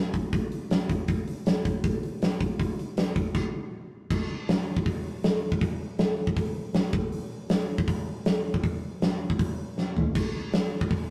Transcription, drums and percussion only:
0.14 kick medium
0.14 open hi-hat medium
0.33 kick loud
0.33 open hi-hat medium
0.52 open hi-hat medium
0.71 snare loud
0.71 open hi-hat medium
0.90 kick medium
0.90 open hi-hat medium
1.08 kick medium
1.08 open hi-hat medium
1.28 open hi-hat medium
1.46 snare loud
1.46 open hi-hat medium
1.65 kick medium
1.65 open hi-hat medium
1.84 kick loud
1.84 open hi-hat medium
2.03 open hi-hat medium
2.22 snare loud
2.22 open hi-hat medium
2.41 kick medium
2.41 open hi-hat medium
2.60 kick medium
2.60 open hi-hat medium
2.79 open hi-hat medium
2.97 snare loud
2.97 open hi-hat medium
3.16 kick medium
3.16 open hi-hat medium
3.34 kick loud
3.34 crash medium
4.11 kick medium
4.11 crash loud
4.49 snare loud
4.49 open hi-hat medium
4.77 kick medium
4.86 kick loud
4.86 open hi-hat medium
5.24 snare loud
5.24 open hi-hat medium
5.52 kick medium
5.61 kick medium
5.61 open hi-hat medium
5.99 snare loud
5.99 open hi-hat medium
6.27 kick loud
6.37 kick loud
6.37 open hi-hat medium
6.74 snare loud
6.74 open hi-hat medium
6.93 kick loud
7.12 open hi-hat medium
7.49 snare loud
7.49 open hi-hat medium
7.78 kick medium
7.88 kick loud
7.88 open hi-hat medium
8.26 snare loud
8.26 open hi-hat medium
8.54 kick medium
8.64 kick medium
8.64 open hi-hat medium
9.02 snare loud
9.02 open hi-hat medium
9.30 kick medium
9.39 kick loud
9.39 open hi-hat medium
9.78 snare medium
9.97 floor tom medium
10.15 kick loud
10.15 open hi-hat medium
10.15 crash loud
10.53 snare loud
10.53 open hi-hat medium
10.81 kick loud
10.91 kick loud
10.91 open hi-hat medium

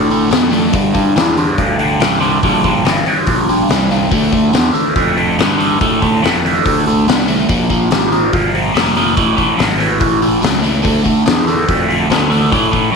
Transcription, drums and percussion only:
0.10 open hi-hat soft
0.31 snare loud
0.31 open hi-hat medium
0.53 open hi-hat medium
0.73 kick loud
0.73 open hi-hat medium
0.94 kick medium
0.94 open hi-hat medium
1.16 snare loud
1.16 open hi-hat medium
1.37 open hi-hat soft
1.58 kick loud
1.58 open hi-hat medium
1.79 open hi-hat medium
2.00 snare loud
2.00 open hi-hat medium
2.22 open hi-hat medium
2.43 kick loud
2.43 open hi-hat medium
2.64 kick medium
2.64 open hi-hat medium
2.85 snare loud
2.85 open hi-hat medium
3.06 open hi-hat medium
3.27 kick medium
3.27 open hi-hat medium
3.49 open hi-hat medium
3.69 snare loud
3.69 open hi-hat medium
3.91 open hi-hat medium
4.12 kick loud
4.12 open hi-hat medium
4.32 kick medium
4.32 open hi-hat soft
4.53 snare loud
4.53 open hi-hat medium
4.75 open hi-hat medium
4.96 kick loud
4.96 open hi-hat medium
5.17 open hi-hat medium
5.39 snare loud
5.39 open hi-hat medium
5.60 open hi-hat medium
5.81 kick loud
5.81 open hi-hat medium
6.02 kick medium
6.02 open hi-hat medium
6.24 snare loud
6.24 open hi-hat medium
6.46 open hi-hat medium
6.66 kick loud
6.66 open hi-hat medium
6.86 open hi-hat medium
7.08 snare loud
7.08 open hi-hat medium
7.28 open hi-hat medium
7.49 kick loud
7.49 open hi-hat medium
7.69 kick medium
7.69 open hi-hat soft
7.91 snare loud
7.91 open hi-hat medium
8.12 open hi-hat soft
8.33 kick loud
8.33 open hi-hat medium
8.55 open hi-hat soft
8.75 snare loud
8.75 open hi-hat medium
8.95 open hi-hat medium
9.17 kick loud
9.17 open hi-hat medium
9.38 kick medium
9.38 open hi-hat medium
9.59 snare loud
9.59 open hi-hat medium
9.80 open hi-hat medium
10.00 kick loud
10.00 open hi-hat medium
10.22 open hi-hat medium
10.43 snare loud
10.43 open hi-hat medium
10.64 open hi-hat medium
10.85 kick loud
10.85 open hi-hat medium
11.06 kick medium
11.06 open hi-hat medium
11.26 snare loud
11.26 open hi-hat medium
11.48 open hi-hat medium
11.69 kick loud
11.69 open hi-hat medium
11.90 open hi-hat soft
12.10 snare loud
12.10 open hi-hat medium
12.32 open hi-hat medium
12.52 kick loud
12.52 open hi-hat medium
12.73 kick medium
12.73 open hi-hat medium

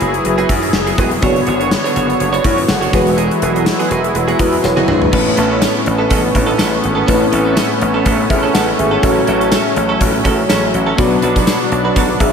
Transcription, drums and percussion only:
0.01 closed hi-hat medium
0.14 closed hi-hat soft
0.25 closed hi-hat medium
0.38 closed hi-hat soft
0.49 kick medium
0.49 closed hi-hat medium
0.62 closed hi-hat soft
0.73 snare loud
0.87 closed hi-hat soft
0.98 kick medium
0.98 closed hi-hat medium
1.11 closed hi-hat medium
1.22 kick loud
1.22 closed hi-hat medium
1.36 closed hi-hat medium
1.47 closed hi-hat medium
1.61 closed hi-hat medium
1.71 snare loud
1.71 tambourine medium
1.85 closed hi-hat medium
1.96 closed hi-hat medium
2.10 closed hi-hat soft
2.20 closed hi-hat medium
2.34 closed hi-hat soft
2.44 kick medium
2.44 closed hi-hat medium
2.58 closed hi-hat soft
2.68 snare loud
2.68 tambourine medium
2.82 closed hi-hat soft
2.93 kick loud
2.93 closed hi-hat medium
3.07 closed hi-hat medium
3.18 closed hi-hat medium
3.31 closed hi-hat soft
3.42 closed hi-hat medium
3.56 closed hi-hat medium
3.66 snare loud
3.66 tambourine medium
3.80 closed hi-hat medium
3.91 closed hi-hat medium
4.04 closed hi-hat soft
4.15 closed hi-hat medium
4.28 closed hi-hat soft
4.39 kick medium
4.39 closed hi-hat medium
4.52 closed hi-hat soft
4.63 snare medium
4.63 tambourine medium
4.77 high tom medium
4.88 mid tom medium
5.02 floor tom medium
5.13 kick loud
5.13 crash loud
5.37 closed hi-hat medium
5.62 snare loud
5.62 closed hi-hat medium
5.62 tambourine medium
5.86 closed hi-hat medium
6.10 kick medium
6.10 closed hi-hat medium
6.35 kick medium
6.35 closed hi-hat medium
6.59 snare loud
6.59 closed hi-hat medium
6.59 tambourine medium
6.84 closed hi-hat medium
7.08 kick loud
7.08 closed hi-hat medium
7.33 closed hi-hat medium
7.57 snare loud
7.57 closed hi-hat medium
7.57 tambourine medium
7.81 closed hi-hat medium
8.06 kick medium
8.06 closed hi-hat medium
8.30 kick medium
8.30 closed hi-hat medium
8.55 snare loud
8.55 closed hi-hat medium
8.55 tambourine medium
8.79 closed hi-hat medium
9.03 kick loud
9.03 closed hi-hat medium
9.27 closed hi-hat medium
9.41 closed hi-hat medium
9.52 snare loud
9.52 closed hi-hat medium
9.52 tambourine medium
9.76 closed hi-hat medium
10.01 kick medium
10.01 closed hi-hat medium
10.25 kick medium
10.25 closed hi-hat medium
10.49 snare loud
10.49 closed hi-hat medium
10.49 tambourine medium
10.74 closed hi-hat medium
10.98 kick loud
10.98 closed hi-hat medium
11.22 closed hi-hat medium
11.36 kick medium
11.36 closed hi-hat medium
11.47 snare loud
11.47 closed hi-hat medium
11.47 tambourine medium
11.72 closed hi-hat medium
11.96 kick medium
11.96 closed hi-hat medium
12.20 kick medium
12.20 closed hi-hat medium

